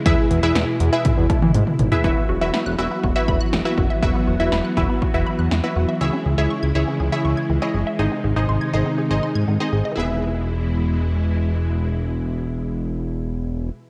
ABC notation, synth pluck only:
X:1
M:4/4
L:1/16
Q:1/4=121
K:E
V:1 name="Synth pluck"
[EGBe]3 [EGBe]4 [EGBe]6- [EGBe] z [EGBe] | [EFBe]3 [EFBe]3 [EFBe]3 [EFBe]4 [EFBe]3 | [EFBe]3 [EFBe]3 [EFBe]3 [EFBe]4 [EFBe]3 | [EGce]3 [EGce]3 [EGce]3 [EGce]4 [EGcd]3 |
[DG^Bd]3 [DGBd]3 [DGBd]3 [DGBd]4 [DGBd]3 | [EGBe]16- | [EGBe]16 |]